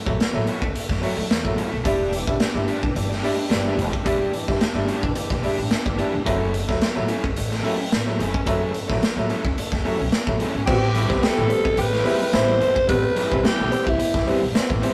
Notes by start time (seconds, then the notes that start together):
Already playing: A3 F#4 E5
0.05 A1 F#3 A3 E4, muted overdriven electric guitar stroke, kick
0.18 muted upright bass stroke, snare, closed hi-hat
0.33 A1 F#3 A3 E4, muted overdriven electric guitar stroke
0.47 A3 E4 F#4 C#5, closed hi-hat
0.62 C#2, muted overdriven electric guitar stroke, kick
0.75 closed hi-hat
0.89 F#2, muted overdriven electric guitar stroke, kick, snare
1.01 F#3 A3 E4 F#4 C#5, open hi-hat
1.16 F#2 A3 E4, muted overdriven electric guitar stroke
1.30 E2, snare, closed hi-hat
1.44 A1 F#3 A3 E4, muted overdriven electric guitar stroke, kick
1.57 A3 E4 F#4 C#5, closed hi-hat
1.71 B1, muted overdriven electric guitar stroke
1.84 E1 G3 D4 E4 G4 B4 D5 E5, kick, closed hi-hat
2.12 E3, closed hi-hat
2.27 B1 G3 D4 E4, muted overdriven electric guitar stroke, kick
2.40 snare, closed hi-hat
2.54 G1 G3 D4 E4, muted overdriven electric guitar stroke
2.68 D4 G4 B4 D5, closed hi-hat
2.82 B1 E3, muted overdriven electric guitar stroke, kick
2.95 G1 E3, muted overdriven electric guitar stroke, closed hi-hat
3.09 muted overdriven electric guitar stroke, snare
3.23 G3 D4 E4 G4 B4 D5, open hi-hat
3.37 D4 E4, muted overdriven electric guitar stroke
3.49 G1 E3 D4 G4 B4 D5, snare, closed hi-hat
3.65 G3 D4 E4
3.77 E1 D4 E4, muted overdriven electric guitar stroke, closed hi-hat
3.91 muted overdriven electric guitar stroke, kick
4.05 E1 G3 D4 E4 G4 B4 D5, kick, closed hi-hat
4.33 E3, closed hi-hat
4.47 G1 G3 D4 E4, muted overdriven electric guitar stroke, kick, snare
4.61 muted upright bass stroke, snare, closed hi-hat
4.74 G1 G3 D4 E4, muted overdriven electric guitar stroke
4.87 D4 G4 B4 D5, closed hi-hat
5.03 B1 E3, muted overdriven electric guitar stroke, kick
5.15 E3, muted upright bass stroke, muted overdriven electric guitar stroke, closed hi-hat
5.30 B1, muted overdriven electric guitar stroke, kick, snare
5.42 G3 D4 E4 G4 B4 D5, open hi-hat
5.58 A1 D4 E4, muted overdriven electric guitar stroke
5.71 D4 E4, muted upright bass stroke, snare, closed hi-hat
5.85 G1 E3, muted overdriven electric guitar stroke, kick
5.97 G3 D4 E4 G4 B4 D5, closed hi-hat
6.14 F1, muted overdriven electric guitar stroke
6.25 F#1 F#3 A3 C4 D#4 E4 F#4 G#4 C5, kick, closed hi-hat
6.36 C#4 E4 A4 C#5
6.54 closed hi-hat
6.68 C#2 F#3 A3 E4, muted overdriven electric guitar stroke, kick, snare
6.81 snare, closed hi-hat
6.95 A1 F#3 A3 E4, muted overdriven electric guitar stroke
7.08 C#4 E4 A4 C#5, closed hi-hat
7.24 C#2, muted overdriven electric guitar stroke, kick
7.36 A1, muted overdriven electric guitar stroke, closed hi-hat
7.51 muted overdriven electric guitar stroke, snare
7.63 F#3 A3 C#4 E4 A4 C#5, open hi-hat
7.79 A3 E4, muted overdriven electric guitar stroke
7.92 A1, snare, closed hi-hat
8.06 F#3 A3 E4, muted overdriven electric guitar stroke
8.19 F#1 A3 C#4 E4 A4 C#5, closed hi-hat
8.33 muted overdriven electric guitar stroke, kick
8.46 F#1 F#3 A3 C#4 E4 A4 C#5, kick, closed hi-hat
8.74 closed hi-hat
8.88 A1 F#3 A3 E4, muted overdriven electric guitar stroke, kick, snare
9.02 muted upright bass stroke, snare, closed hi-hat
9.16 A1 F#3 A3 E4, muted overdriven electric guitar stroke
9.29 C#4 E4 A4 C#5, closed hi-hat
9.44 C#2, muted overdriven electric guitar stroke, kick
9.57 muted upright bass stroke, muted overdriven electric guitar stroke, closed hi-hat
9.72 C#2, muted overdriven electric guitar stroke, kick, snare
9.84 F#3 A3 C#4 E4 A4 C#5, open hi-hat
9.99 B1 A3 E4, muted overdriven electric guitar stroke
10.12 muted upright bass stroke, snare, closed hi-hat
10.26 A1 F#3 A3 E4, muted overdriven electric guitar stroke, kick
10.40 A3 C#4 E4 A4 C#5, closed hi-hat
10.54 G#1, muted overdriven electric guitar stroke
10.66 A1 G3 B3 C4 G4, kick, crash
10.94 A2 E3 G3 C4 E4 B4, closed hi-hat
11.09 C2 G3 B3 C4 B4, kick, snare
11.22 G3 B3 C4 E4 G4 A4 B4, snare, closed hi-hat
11.36 A1 A2 E3
11.49 G3 B3 C4, muted overdriven electric guitar stroke, closed hi-hat
11.64 C2, muted overdriven electric guitar stroke, kick
11.77 A1 B3 C4 G4 B4, muted overdriven electric guitar stroke, closed hi-hat
11.91 A2 E3, snare
12.04 G3 B3 C4 E4 B4, open hi-hat
12.20 muted overdriven electric guitar stroke
12.32 A1 G3 B3 C4 E4 B4 C5, snare, closed hi-hat
12.47 A2 E3, muted overdriven electric guitar stroke
12.60 G1 G3 B3 C4 E4 C5, closed hi-hat
12.76 muted overdriven electric guitar stroke, kick
12.87 A1 G3 B3 C4 B4, kick, closed hi-hat
13.15 A2 E3 G3 C4 E4 B4, closed hi-hat
13.31 B1 G3 B3 C4, kick
13.43 G3 B3 C4 E4 G4 B4, muted upright bass stroke, snare, closed hi-hat
13.58 B1 A2 E3
13.71 G3 B3 C4, muted overdriven electric guitar stroke, closed hi-hat
13.84 C2 E4, muted overdriven electric guitar stroke, kick
13.97 B3 C4, muted overdriven electric guitar stroke, muted upright bass stroke, closed hi-hat
14.14 C2 A2 E3, kick, snare
14.27 G3 B3 C4 E4 B4, open hi-hat
14.41 B1, muted overdriven electric guitar stroke
14.54 B3 C4, muted overdriven electric guitar stroke, muted upright bass stroke, snare, closed hi-hat
14.69 A1 A2 E3, muted overdriven electric guitar stroke, kick
14.82 G3 B3 C4 E4 C5, closed hi-hat